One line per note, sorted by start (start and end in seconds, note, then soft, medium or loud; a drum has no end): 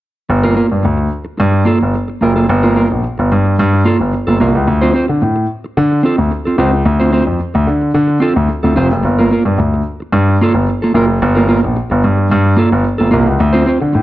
0.29 0.52 G1 medium
0.29 muted clean electric guitar stroke soft
0.43 0.54 A#3 medium
0.43 0.56 F4 medium
0.43 0.56 A#4 medium
0.56 0.69 A#3 medium
0.56 0.69 F4 medium
0.56 0.69 A#4 medium
0.70 0.82 G2 medium
0.70 muted clean electric guitar stroke soft
0.83 1.07 D2 medium
0.83 muted clean electric guitar stroke soft
0.98 muted clean electric guitar stroke soft
1.25 muted clean electric guitar stroke soft
1.37 1.62 G2 loud
1.37 muted clean electric guitar stroke soft
1.52 muted clean electric guitar stroke soft
1.65 1.81 A#3 medium
1.65 1.81 F4 medium
1.65 1.80 A4 medium
1.81 1.93 G1 medium
1.81 muted clean electric guitar stroke soft
1.94 muted clean electric guitar stroke soft
2.08 muted clean electric guitar stroke soft
2.21 2.44 F#1 medium
2.21 2.36 A#3 medium
2.21 2.36 F4 medium
2.21 2.35 A#4 medium
2.36 2.47 A#3 soft
2.36 2.47 F4 soft
2.36 2.46 A4 medium
2.48 2.84 G1 loud
2.48 muted clean electric guitar stroke soft
2.63 2.75 A#3 medium
2.63 2.76 F4 medium
2.63 2.76 A#4 medium
2.76 2.88 A#3 medium
2.76 2.88 F4 medium
2.76 2.89 A#4 medium
2.90 3.02 A#1 medium
2.90 muted clean electric guitar stroke soft
3.03 muted clean electric guitar stroke soft
3.18 3.29 G1 medium
3.18 muted clean electric guitar stroke soft
3.32 3.54 G2 medium
3.45 muted clean electric guitar stroke soft
3.58 3.81 G2 loud
3.58 muted clean electric guitar stroke soft
3.73 muted clean electric guitar stroke soft
3.85 4.00 A#3 medium
3.85 4.00 F4 medium
3.85 3.99 A4 medium
4.00 4.11 G1 medium
4.00 muted clean electric guitar stroke soft
4.13 muted clean electric guitar stroke soft
4.27 4.38 G1 medium
4.27 4.39 A#3 soft
4.27 4.38 F4 medium
4.27 4.38 A4 medium
4.40 4.52 C2 medium
4.40 4.55 A#3 medium
4.40 4.54 F4 medium
4.40 4.53 A#4 medium
4.54 4.65 C#2 medium
4.54 muted clean electric guitar stroke soft
4.67 4.90 D2 medium
4.67 muted clean electric guitar stroke soft
4.81 4.93 C4 medium
4.81 4.94 F4 medium
4.81 4.94 C5 medium
4.94 5.06 C4 medium
4.94 5.07 F4 medium
4.94 5.07 C5 medium
5.08 5.20 D3 medium
5.08 muted clean electric guitar stroke soft
5.22 5.44 A2 medium
5.22 muted clean electric guitar stroke soft
5.36 muted clean electric guitar stroke soft
5.64 muted clean electric guitar stroke soft
5.77 5.99 D3 loud
5.77 muted clean electric guitar stroke soft
5.92 muted clean electric guitar stroke soft
6.03 6.19 C4 medium
6.03 6.18 F4 medium
6.03 6.17 A4 medium
6.18 6.29 D2 medium
6.18 muted clean electric guitar stroke soft
6.31 muted clean electric guitar stroke soft
6.45 6.57 C4 soft
6.45 6.57 F4 medium
6.45 6.56 A4 medium
6.58 6.81 C#2 medium
6.58 6.73 C4 medium
6.58 6.74 F4 medium
6.58 6.74 C5 medium
6.74 muted clean electric guitar stroke soft
6.85 7.20 D2 loud
6.85 muted clean electric guitar stroke soft
7.00 7.11 C4 medium
7.00 7.12 F4 medium
7.00 7.13 C5 medium
7.12 7.24 C4 medium
7.12 7.25 F4 medium
7.12 7.25 C5 medium
7.27 7.38 F2 medium
7.27 muted clean electric guitar stroke soft
7.39 muted clean electric guitar stroke soft
7.54 7.65 D2 medium
7.54 muted clean electric guitar stroke soft
7.67 7.90 D3 medium
7.81 muted clean electric guitar stroke soft
7.94 8.17 D3 loud
7.94 muted clean electric guitar stroke soft
8.08 muted clean electric guitar stroke soft
8.20 8.36 C4 medium
8.20 8.35 F4 medium
8.20 8.34 A4 medium
8.36 8.47 D2 medium
8.36 muted clean electric guitar stroke soft
8.48 muted clean electric guitar stroke soft
8.63 8.74 D2 medium
8.63 8.74 C4 soft
8.63 8.74 F4 medium
8.63 8.74 A4 medium
8.76 8.89 F1 medium
8.76 8.91 C4 medium
8.76 8.91 F4 medium
8.76 8.90 C5 medium
8.91 9.02 F#1 medium
8.91 muted clean electric guitar stroke soft
9.03 9.26 G1 medium
9.03 muted clean electric guitar stroke soft
9.19 9.30 A#3 medium
9.19 9.31 F4 medium
9.19 9.32 A#4 medium
9.31 9.43 A#3 medium
9.31 9.43 F4 medium
9.31 9.44 A#4 medium
9.45 9.56 G2 medium
9.45 muted clean electric guitar stroke medium
9.58 9.80 D2 medium
9.58 muted clean electric guitar stroke soft
9.74 muted clean electric guitar stroke soft
10.00 muted clean electric guitar stroke soft
10.12 10.35 G2 loud
10.12 muted clean electric guitar stroke soft
10.28 muted clean electric guitar stroke soft
10.41 10.56 A#3 medium
10.41 10.56 F4 medium
10.41 10.54 A4 medium
10.54 10.65 G1 medium
10.54 muted clean electric guitar stroke soft
10.69 muted clean electric guitar stroke soft
10.82 10.93 A#3 soft
10.82 10.93 F4 soft
10.82 10.92 A4 medium
10.94 11.17 F#1 medium
10.94 11.09 A#3 medium
10.94 11.09 F4 medium
10.94 11.08 A#4 medium
11.08 muted clean electric guitar stroke soft
11.22 11.56 G1 loud
11.22 muted clean electric guitar stroke soft
11.35 11.47 A#3 medium
11.35 11.47 F4 medium
11.35 11.49 A#4 medium
11.48 11.60 A#3 medium
11.48 11.61 F4 medium
11.48 11.61 A#4 medium
11.63 11.74 A#1 medium
11.63 muted clean electric guitar stroke medium
11.76 muted clean electric guitar stroke soft
11.90 12.01 G1 medium
11.90 muted clean electric guitar stroke soft
12.04 12.26 G2 medium
12.17 muted clean electric guitar stroke soft
12.30 12.53 G2 loud
12.30 muted clean electric guitar stroke soft
12.45 muted clean electric guitar stroke soft
12.57 12.72 A#3 medium
12.57 12.72 F4 medium
12.57 12.70 A4 medium
12.72 12.83 G1 medium
12.72 muted clean electric guitar stroke soft
12.84 muted clean electric guitar stroke soft
12.98 13.10 G1 medium
12.98 13.10 A#3 soft
12.98 13.10 F4 medium
12.98 13.09 A4 medium
13.11 13.25 C2 medium
13.11 13.26 A#3 medium
13.11 13.26 F4 medium
13.11 13.26 A#4 medium
13.26 13.37 C#2 medium
13.26 muted clean electric guitar stroke medium
13.39 13.62 D2 loud
13.39 muted clean electric guitar stroke soft
13.53 13.65 C4 medium
13.53 13.66 F4 medium
13.53 13.67 C5 medium
13.66 13.78 C4 medium
13.66 13.79 F4 medium
13.66 13.79 C5 medium
13.80 13.92 D3 medium
13.80 muted clean electric guitar stroke soft
13.93 14.02 A2 medium
13.93 muted clean electric guitar stroke soft